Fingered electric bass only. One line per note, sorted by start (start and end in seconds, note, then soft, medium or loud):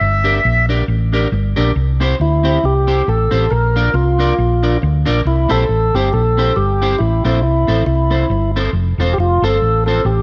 0.01 0.38 G1 loud
0.45 0.82 A#1 medium
0.88 1.25 A1 loud
1.32 1.53 G1 loud
1.58 1.74 A#1 medium
1.76 2.13 C2 loud
2.20 2.57 D2 medium
2.64 3.01 C2 medium
3.08 3.29 A1 loud
3.32 3.48 A1 medium
3.51 3.88 A#1 loud
3.94 4.31 C2 loud
4.38 4.75 A#1 medium
4.83 5.03 D2 loud
5.08 5.23 A#1 medium
5.25 5.46 C2 loud
5.51 5.66 A#1 medium
5.69 5.90 A1 medium
5.94 6.10 G1 medium
6.14 6.50 A#1 medium
6.57 6.93 G1 medium
7.00 7.21 A1 medium
7.25 7.44 A#1 medium
7.44 7.65 C2 medium
7.68 7.84 A1 medium
7.86 8.24 C2 medium
8.30 8.67 G1 loud
8.73 8.95 F1 loud
8.98 9.15 E1 medium
9.18 9.39 F1 loud
9.42 9.58 G1 medium
9.62 9.99 A1 medium
10.05 10.22 A1 medium